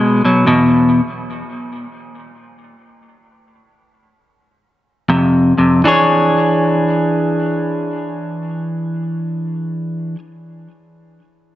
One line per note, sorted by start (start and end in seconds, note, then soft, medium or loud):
0.00 0.21 B2 medium
0.00 0.22 G#3 loud
0.25 0.45 B2 medium
0.25 0.45 F#3 medium
0.46 1.00 E2 medium
0.46 1.00 B2 loud
5.09 5.52 F2 medium
5.09 5.53 C3 medium
5.58 5.82 F2 medium
5.58 5.83 C3 medium
5.84 10.15 E3 medium
5.84 10.16 D4 loud
5.84 10.18 G#4 loud
5.84 10.19 C#5 loud